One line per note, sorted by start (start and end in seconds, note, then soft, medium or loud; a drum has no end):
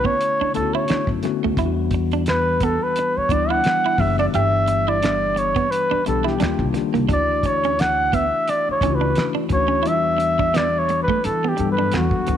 0.00 0.11 D3 medium
0.00 0.54 A3 medium
0.00 0.55 B3 medium
0.00 0.55 C#4 medium
0.00 0.55 E4 medium
0.05 0.15 B3 medium
0.05 0.55 C#5 loud
0.05 kick medium
0.21 closed hi-hat medium
0.41 0.50 D4 medium
0.41 muted upright bass stroke soft
0.53 0.85 D2 medium
0.53 1.17 D3 medium
0.53 1.17 A3 medium
0.53 1.17 B3 medium
0.53 1.17 C#4 medium
0.53 0.62 E4 medium
0.53 0.76 A4 medium
0.53 muted clean electric guitar stroke soft
0.53 closed hi-hat medium
0.62 1.21 F#4 medium
0.74 0.84 E4 medium
0.74 1.09 C#5 medium
0.88 1.03 D4 medium
0.88 finger snap medium
0.88 muted upright bass stroke soft
0.88 snare medium
0.88 closed hi-hat medium
1.07 1.21 F#2 medium
1.07 kick medium
1.23 1.54 D3 medium
1.23 1.55 A3 medium
1.23 1.55 B3 medium
1.23 1.55 C#4 medium
1.23 1.55 F#4 medium
1.23 muted clean electric guitar stroke soft
1.23 snare soft
1.23 closed hi-hat medium
1.44 1.56 D2 medium
1.44 1.54 A3 medium
1.57 2.77 E2 medium
1.57 2.83 E3 medium
1.57 2.83 G3 medium
1.57 2.84 B3 medium
1.57 2.84 D4 medium
1.57 1.71 E4 medium
1.57 1.66 E4 medium
1.57 kick loud
1.57 closed hi-hat medium
1.65 2.87 F#4 medium
1.91 muted clean electric guitar stroke soft
1.91 kick medium
1.91 closed hi-hat medium
2.11 2.23 D4 medium
2.11 closed hi-hat soft
2.26 2.65 B4 medium
2.26 finger snap medium
2.26 snare loud
2.26 closed hi-hat medium
2.60 2.75 B3 medium
2.60 2.85 A4 medium
2.60 kick medium
2.60 closed hi-hat medium
2.83 3.19 B4 medium
2.96 muted clean electric guitar stroke soft
2.96 closed hi-hat medium
3.17 3.34 C#5 medium
3.17 muted upright bass stroke soft
3.29 3.59 D2 medium
3.29 3.92 E3 medium
3.29 3.93 G3 medium
3.29 3.93 B3 medium
3.29 3.93 D4 medium
3.29 3.44 D4 medium
3.29 3.93 E4 medium
3.29 3.52 D5 medium
3.29 kick medium
3.29 closed hi-hat medium
3.50 3.60 E4 medium
3.50 4.02 F#5 loud
3.64 finger snap medium
3.64 snare medium
3.64 closed hi-hat medium
3.86 3.95 E4 medium
3.98 4.28 F#1 medium
3.98 4.30 E3 medium
3.98 4.30 G3 medium
3.98 4.31 B3 medium
3.98 4.31 D4 medium
3.98 4.31 G4 medium
3.98 4.18 E5 medium
3.98 muted clean electric guitar stroke soft
3.98 kick medium
3.98 open hi-hat soft
4.19 4.29 D4 medium
4.19 4.26 D5 medium
4.33 5.53 G1 loud
4.33 5.59 E3 medium
4.33 5.60 G3 medium
4.33 4.41 A#3 soft
4.33 5.60 D4 medium
4.33 5.60 G4 medium
4.33 4.48 G4 medium
4.33 4.90 E5 loud
4.33 closed hi-hat medium
4.40 5.63 B3 medium
4.68 muted clean electric guitar stroke soft
4.68 closed hi-hat medium
4.88 4.98 E4 medium
4.88 5.40 D5 medium
5.03 5.16 D4 medium
5.03 finger snap medium
5.03 snare medium
5.03 closed hi-hat medium
5.36 5.72 C#5 medium
5.36 muted clean electric guitar stroke soft
5.36 closed hi-hat medium
5.56 5.66 B3 medium
5.56 kick medium
5.56 closed hi-hat soft
5.71 6.06 B4 medium
5.71 closed hi-hat medium
5.91 6.01 D4 medium
5.91 muted upright bass stroke soft
6.06 6.36 B1 medium
6.06 6.41 E3 medium
6.06 6.39 G3 medium
6.06 6.41 B3 medium
6.06 6.40 D4 medium
6.06 6.41 G4 medium
6.06 6.28 A4 medium
6.06 muted clean electric guitar stroke soft
6.06 closed hi-hat medium
6.24 6.35 E4 medium
6.24 6.67 G4 medium
6.24 snare soft
6.40 6.57 D#2 medium
6.40 6.72 D#3 medium
6.40 6.72 G3 medium
6.40 6.72 A#3 medium
6.40 6.53 D4 medium
6.40 6.72 D4 medium
6.40 6.72 F4 medium
6.40 finger snap medium
6.40 snare loud
6.40 closed hi-hat medium
6.59 6.72 C2 medium
6.59 kick medium
6.74 7.06 D#3 medium
6.74 7.07 G3 medium
6.74 7.07 A#3 medium
6.74 7.07 D4 medium
6.74 7.07 G4 medium
6.74 muted clean electric guitar stroke soft
6.74 snare soft
6.74 closed hi-hat medium
6.94 7.07 C2 medium
6.94 7.04 A#3 medium
6.94 closed hi-hat soft
7.09 8.29 D2 medium
7.09 8.35 E3 medium
7.09 8.35 A3 medium
7.09 7.22 D4 medium
7.09 8.36 D4 medium
7.09 8.36 E4 medium
7.09 8.36 F#4 medium
7.09 kick loud
7.09 closed hi-hat medium
7.13 7.48 D5 loud
7.43 7.82 C#5 loud
7.43 muted clean electric guitar stroke soft
7.43 kick medium
7.43 closed hi-hat medium
7.64 7.74 C#4 medium
7.64 closed hi-hat soft
7.79 8.16 F#5 loud
7.79 finger snap medium
7.79 snare loud
7.79 closed hi-hat medium
8.13 8.26 B3 medium
8.13 8.51 E5 medium
8.13 kick medium
8.13 closed hi-hat medium
8.48 8.71 D5 loud
8.48 muted clean electric guitar stroke soft
8.48 closed hi-hat medium
8.69 8.96 C#5 medium
8.69 muted upright bass stroke soft
8.81 9.11 C#2 medium
8.81 9.45 E3 medium
8.81 9.45 A3 medium
8.81 8.96 C#4 medium
8.81 9.45 C#4 medium
8.81 9.46 D4 medium
8.81 8.90 E4 medium
8.81 kick medium
8.81 closed hi-hat medium
8.91 9.49 F#4 medium
8.95 9.29 B4 medium
9.01 9.11 D4 medium
9.16 finger snap medium
9.16 snare loud
9.16 closed hi-hat medium
9.35 9.45 D4 medium
9.49 9.87 D2 medium
9.49 9.82 E3 medium
9.49 9.82 A3 medium
9.49 9.82 C#4 medium
9.49 9.83 D4 medium
9.49 9.83 F#4 medium
9.49 9.89 C#5 medium
9.49 muted clean electric guitar stroke soft
9.49 kick medium
9.49 closed hi-hat medium
9.68 9.79 C#4 medium
9.83 11.11 E3 medium
9.83 11.11 G3 medium
9.83 11.11 B3 medium
9.83 9.97 E4 medium
9.83 9.93 F4 medium
9.83 closed hi-hat medium
9.87 11.05 E2 medium
9.87 11.12 D4 medium
9.87 10.58 E5 medium
9.93 11.15 F#4 medium
10.18 muted clean electric guitar stroke soft
10.18 closed hi-hat medium
10.39 10.49 D4 medium
10.39 kick medium
10.54 10.67 B3 medium
10.54 10.80 D5 medium
10.54 finger snap medium
10.54 snare loud
10.54 closed hi-hat medium
10.79 11.01 C#5 medium
10.89 muted clean electric guitar stroke soft
10.89 closed hi-hat medium
11.03 11.27 B4 medium
11.08 11.19 A3 medium
11.08 kick medium
11.24 11.54 E3 medium
11.24 11.50 A4 medium
11.24 closed hi-hat medium
11.44 11.54 B3 medium
11.48 11.70 G4 medium
11.57 11.88 G2 medium
11.57 12.21 E3 medium
11.57 11.66 F#3 medium
11.57 12.22 B3 medium
11.57 12.22 D4 medium
11.57 12.22 A4 medium
11.57 muted clean electric guitar stroke soft
11.57 closed hi-hat medium
11.66 12.25 G3 medium
11.72 11.92 B4 medium
11.79 11.88 D4 medium
11.92 12.10 E2 loud
11.92 12.06 B3 medium
11.92 finger snap medium
11.92 snare loud
11.92 closed hi-hat medium
11.97 12.37 F#4 medium
12.11 kick loud
12.27 12.37 D2 medium
12.27 12.37 E3 medium
12.27 12.37 G3 medium
12.27 12.37 B3 medium
12.27 12.37 D4 medium
12.27 12.37 F#4 medium
12.27 muted clean electric guitar stroke soft
12.27 closed hi-hat medium